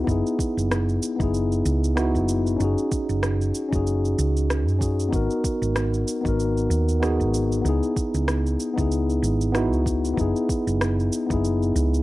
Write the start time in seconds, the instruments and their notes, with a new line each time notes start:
0.04 fingered electric bass F#1, tine electric piano B3 D#4, kick
0.08 tine electric piano E4 G#4, cabasa
0.27 cabasa
0.39 kick, cabasa
0.57 fingered electric bass F#1, cabasa
0.71 cross-stick, cabasa
0.89 cabasa
1.03 cabasa
1.16 fingered electric bass F#1, tine electric piano B3 D#4, kick
1.20 tine electric piano E4 G#4, cabasa
1.34 cabasa
1.52 cabasa
1.65 fingered electric bass C#2, cabasa
1.84 cabasa
1.95 tine electric piano B3 D#4 E4 F#4, cross-stick, cabasa
2.15 fingered electric bass F#1, cabasa
2.29 cabasa
2.47 cabasa
2.57 fingered electric bass F#1, tine electric piano C#4 D#4, cabasa
2.62 tine electric piano F#4 G#4
2.78 cabasa
2.92 kick, cabasa
3.09 fingered electric bass F#1, cabasa
3.23 cross-stick, cabasa
3.42 cabasa
3.55 cabasa
3.69 fingered electric bass F#1, tine electric piano C#4 D#4, kick
3.73 tine electric piano F#4 G#4, cabasa
3.87 cabasa
4.05 cabasa
4.18 fingered electric bass C#2, cabasa
4.37 cabasa
4.50 cross-stick, cabasa
4.67 fingered electric bass F#2, cabasa
4.79 tine electric piano C#4 D#4 F#4 G#4, kick, cabasa
5.00 cabasa
5.09 fingered electric bass G#1, tine electric piano B3 D#4
5.13 tine electric piano F#4 A#4, kick, cabasa
5.31 cabasa
5.44 kick, cabasa
5.62 fingered electric bass G#1, cabasa
5.76 cross-stick, cabasa
5.94 cabasa
6.08 cabasa
6.21 fingered electric bass G#1, tine electric piano B3 D#4, kick
6.26 tine electric piano F#4 A#4, cabasa
6.40 cabasa
6.57 cabasa
6.70 fingered electric bass D#2, cabasa
6.89 cabasa
7.00 tine electric piano B3 D#4 F#4 G#4, cross-stick, cabasa
7.20 fingered electric bass G#1, cabasa
7.34 cabasa
7.52 cabasa
7.61 fingered electric bass C#2, tine electric piano B3 D#4
7.66 tine electric piano E4 G#4, cabasa
7.83 cabasa
7.96 kick, cabasa
8.14 fingered electric bass C#2, cabasa
8.28 cross-stick, cabasa
8.47 cabasa
8.60 cabasa
8.74 tine electric piano B3 D#4, kick
8.78 fingered electric bass C#2, tine electric piano E4 G#4, cabasa
8.92 cabasa
9.10 cabasa
9.22 fingered electric bass G#1, cabasa
9.41 cabasa
9.52 tine electric piano B3 D#4 E4 F#4, cross-stick, cabasa
9.73 fingered electric bass C#2, cabasa
9.86 kick, cabasa
10.05 cabasa
10.14 fingered electric bass F#1, tine electric piano B3 D#4, kick
10.18 tine electric piano E4 G#4, cabasa
10.36 cabasa
10.49 kick, cabasa
10.67 fingered electric bass F#1, cabasa
10.81 cross-stick, cabasa
11.00 cabasa
11.13 cabasa
11.27 fingered electric bass F#1, tine electric piano B3 D#4, kick
11.31 tine electric piano E4 G#4, cabasa
11.45 cabasa
11.62 cabasa
11.75 fingered electric bass C#2, cabasa
11.94 cabasa